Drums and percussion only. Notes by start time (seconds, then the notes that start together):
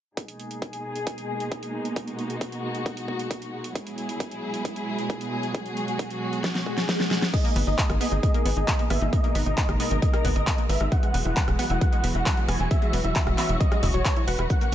0.17 kick, closed hi-hat
0.28 closed hi-hat
0.40 closed hi-hat
0.51 closed hi-hat
0.62 kick, closed hi-hat
0.73 closed hi-hat
0.96 closed hi-hat
1.07 kick, closed hi-hat
1.18 closed hi-hat
1.40 closed hi-hat
1.52 kick, closed hi-hat
1.63 closed hi-hat
1.85 closed hi-hat
1.96 kick, closed hi-hat
2.08 closed hi-hat
2.19 closed hi-hat
2.30 closed hi-hat
2.41 kick, closed hi-hat
2.52 closed hi-hat
2.75 closed hi-hat
2.86 kick, closed hi-hat
2.97 closed hi-hat
3.08 kick
3.19 closed hi-hat
3.31 kick, closed hi-hat
3.42 closed hi-hat
3.64 closed hi-hat
3.75 kick, closed hi-hat
3.87 closed hi-hat
3.98 closed hi-hat
4.09 closed hi-hat
4.20 kick, closed hi-hat
4.31 closed hi-hat
4.54 closed hi-hat
4.65 kick, closed hi-hat
4.76 closed hi-hat
4.99 closed hi-hat
5.10 kick, closed hi-hat
5.21 closed hi-hat
5.43 closed hi-hat
5.55 kick, closed hi-hat
5.66 closed hi-hat
5.77 closed hi-hat
5.88 closed hi-hat
5.99 kick, closed hi-hat
6.10 closed hi-hat
6.33 closed hi-hat
6.44 kick, snare, closed hi-hat
6.55 snare, closed hi-hat
6.66 kick
6.78 snare, closed hi-hat
6.89 kick, snare, closed hi-hat
7.00 snare, closed hi-hat
7.11 snare, closed hi-hat
7.22 snare, closed hi-hat
7.34 kick, closed hi-hat, crash
7.45 closed hi-hat
7.56 open hi-hat
7.67 closed hi-hat
7.78 kick, clap, closed hi-hat
7.90 cross-stick, closed hi-hat
8.01 open hi-hat
8.12 closed hi-hat
8.23 kick, closed hi-hat
8.34 closed hi-hat
8.46 open hi-hat
8.57 closed hi-hat
8.68 kick, clap, closed hi-hat
8.79 closed hi-hat
8.90 cross-stick, open hi-hat
9.02 closed hi-hat
9.13 kick, closed hi-hat
9.24 closed hi-hat
9.35 open hi-hat
9.46 closed hi-hat
9.58 kick, clap, closed hi-hat
9.69 cross-stick, closed hi-hat
9.80 open hi-hat
9.91 closed hi-hat
10.02 kick, closed hi-hat
10.14 cross-stick, closed hi-hat
10.25 kick, open hi-hat
10.36 closed hi-hat
10.47 kick, clap, closed hi-hat
10.58 closed hi-hat
10.69 open hi-hat
10.81 cross-stick, closed hi-hat
10.92 kick, closed hi-hat
11.03 closed hi-hat
11.14 open hi-hat
11.25 closed hi-hat
11.37 kick, clap, closed hi-hat
11.48 cross-stick, closed hi-hat
11.59 open hi-hat
11.70 closed hi-hat
11.81 kick, closed hi-hat
11.93 closed hi-hat
12.04 open hi-hat
12.15 closed hi-hat
12.26 kick, clap, closed hi-hat
12.37 closed hi-hat
12.49 cross-stick, open hi-hat
12.60 closed hi-hat
12.71 kick, closed hi-hat
12.82 closed hi-hat
12.93 open hi-hat
13.04 closed hi-hat
13.16 kick, clap, closed hi-hat
13.27 cross-stick, closed hi-hat
13.38 clap, open hi-hat
13.49 closed hi-hat
13.61 kick, closed hi-hat
13.72 cross-stick, closed hi-hat
13.83 kick, open hi-hat
13.94 closed hi-hat
14.05 kick, clap, closed hi-hat
14.16 closed hi-hat
14.28 open hi-hat
14.39 cross-stick, closed hi-hat
14.50 kick, closed hi-hat, shaker
14.61 closed hi-hat, shaker